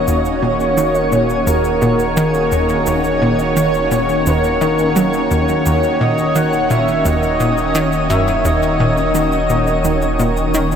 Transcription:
Already playing: D#1 D#3 A#3 C#4 F#4 C#5 D#5 F#5
0.07 D#2 G#4, cabasa
0.25 cabasa
0.42 A#2
0.60 cabasa
0.77 D#3, cabasa
0.95 cabasa, low woodblock
1.12 A#2, cabasa
1.30 cabasa
1.47 D#2 A#4, cabasa
1.64 cabasa
1.82 A#2, cabasa
1.99 cabasa
2.17 D#3 A#4, cabasa, low woodblock
2.34 cabasa
2.52 D#2, cabasa
2.69 cabasa
2.86 D#2 C#5, cabasa
3.04 cabasa
3.22 A#2
3.39 cabasa, low woodblock
3.57 D#3, cabasa
3.74 cabasa
3.91 A#2, cabasa
4.09 cabasa
4.26 D#2 A#4, cabasa
4.44 cabasa
4.61 D#3, cabasa, low woodblock
4.79 cabasa
4.96 F#3, cabasa
5.13 cabasa
5.31 D#2, cabasa
5.48 cabasa
5.66 D#1 D#2 C#5 D#6, cabasa
5.83 cabasa
6.01 A#2 D#5, low woodblock
6.18 cabasa
6.35 D#3 F#5, cabasa
6.53 cabasa
6.70 A#2 E5, cabasa
6.88 cabasa
7.05 D#2 D#5, cabasa
7.23 cabasa, low woodblock
7.40 A#2, cabasa
7.58 cabasa
7.75 D#3, cabasa
7.92 cabasa
8.10 F#2 E5, cabasa
8.27 cabasa
8.45 D#2 D#5, cabasa, low woodblock
8.62 cabasa
8.80 A#2
8.97 cabasa
9.15 D#3, cabasa
9.32 cabasa
9.49 A#2, cabasa
9.67 cabasa, low woodblock
9.84 D#2, cabasa
10.02 cabasa
10.19 A#2, cabasa
10.37 cabasa
10.54 D#3, cabasa
10.72 cabasa

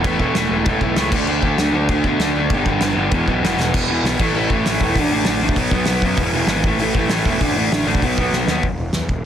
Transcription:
0.04 E1 A2 E3 A3, kick, crash
0.19 E1 A2 E3 A3, kick
0.34 E1 A2 E3 A3, snare, crash
0.49 E1 A2 E3 A3
0.65 E1 A2 E3 A3, kick, crash
0.80 B1 A2 E3 A3, kick
0.96 C#2 A2 E3 A3, snare, crash
1.12 D2 D3 A3 D4, kick, crash
1.26 D2 D3 A3 D4, crash
1.42 D2 D3 A3 D4, kick
1.57 D2 D3 A3 D4, snare, crash
1.72 D2 D3 A3 D4
1.89 D2 D3 A3 D4, kick, crash
2.04 B2 D3 A3 D4, kick
2.19 D2 D3 A3 D4, snare, crash
2.37 D3 A3 D4
2.50 G1 G2 D3, kick, crash
2.54 G3
2.65 G1 G2 D3 G3, kick
2.80 G1 G2 D3 G3, snare, crash
2.96 G1 G2 D3 G3
3.11 E1 E2 B2 E3, kick, crash
3.27 B1 E2 B2 E3, kick
3.41 E1 E2 B2 E3, snare, crash
3.57 E1 E2 B2 E3, snare
3.72 E1 E2 B2 E3, kick, crash
3.87 E1 E2 B2 E3
4.03 B1 E2 B2 E3, snare, open hi-hat
4.19 A1 A2 E3 A3, kick, crash
4.33 A1 A2 E3 A3
4.50 A1 A2 E3 A3, kick
4.65 A1 A2 E3 A3, snare, open hi-hat
4.80 E1 A2 E3 A3, kick
4.95 A1 D3 A3 D4, kick, open hi-hat
5.11 A1 D3 A3 D4
5.25 A1 D3 A3 D4, snare, open hi-hat
5.41 A1 D3 A3 D4
5.49 kick
5.56 B1 B2 F#3 B3, kick, open hi-hat
5.71 B1 B2 F#3 B3, kick
5.85 B1 B2 F#3, snare, open hi-hat
5.90 B3
6.02 F#2 B2 F#3 B3, kick
6.17 E1 E2 B2, kick, open hi-hat
6.21 E3
6.33 E1 E2 B2 E3
6.47 G#1 E2, snare, open hi-hat
6.51 B2 E3
6.64 A1 A2 E3 A3, kick
6.77 A1 A3, open hi-hat
6.82 A2 E3
6.94 A1 A2 E3 A3, kick
7.08 A1 A3, snare, open hi-hat
7.12 A2 E3
7.25 E1 A2 E3 A3, kick
7.41 A1 D3 A3 D4, kick, open hi-hat
7.54 A1 D3 A3 D4
7.71 A1 D3 A3 D4, snare, open hi-hat
7.86 A1 D3 A3 D4
7.95 kick
8.02 B1 B2 F#3 B3, kick, open hi-hat
8.18 B1 B2 F#3 B3, kick
8.31 B1, snare
8.36 B2 F#3 B3
8.47 D#2 F#3 B3, snare
8.51 B2
8.63 E1, kick, floor tom
8.78 floor tom
8.93 E2, snare, floor tom
9.09 E1, kick, floor tom

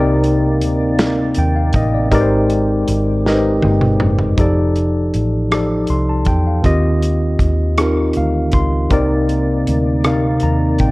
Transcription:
Already playing: C2 C3 A#3 C4 D#4 A#4 D5 G5
0.24 closed hi-hat
0.61 D2, closed hi-hat
0.99 snare, closed hi-hat
1.34 D#2, closed hi-hat
1.39 G5
1.56 F5
1.73 A1 D#5, kick, closed hi-hat
1.94 D5
2.11 G#1 G#3 C4 D#4 G4 A#4 B4 D5, kick, closed hi-hat
2.21 C5
2.50 closed hi-hat
2.88 G#1, closed hi-hat
3.25 G#3 D#4 G4 A#4 B4 D#5, snare
3.34 C5
3.62 G1, high tom
3.81 mid tom
4.00 F#1, mid tom
4.19 floor tom
4.37 F1 F3 D#4 G4 A4 D5, kick, closed hi-hat
4.76 closed hi-hat
5.14 A1, closed hi-hat
5.51 F3 D#4 G4 A4 D5, cross-stick, closed hi-hat
5.87 C2 C6, closed hi-hat
6.10 A5
6.25 E2 G5, kick, closed hi-hat
6.47 F5
6.63 D#2 D#3 C4 F4 G4 D#5, kick, closed hi-hat
7.03 closed hi-hat
7.39 D#2, kick, closed hi-hat
7.78 C4 D#4 F4 G4 A#4, cross-stick, closed hi-hat
8.13 D2 F5, closed hi-hat
8.52 C#2 C6, kick, closed hi-hat
8.89 C2 C3 A#3 C4 D#4 A#4 D5, kick, closed hi-hat
9.29 closed hi-hat
9.67 D2, closed hi-hat
10.04 C3 C4 D#4 A#4 F5, cross-stick, closed hi-hat
10.40 D#2 A#5, closed hi-hat
10.78 A1 G5, kick, closed hi-hat

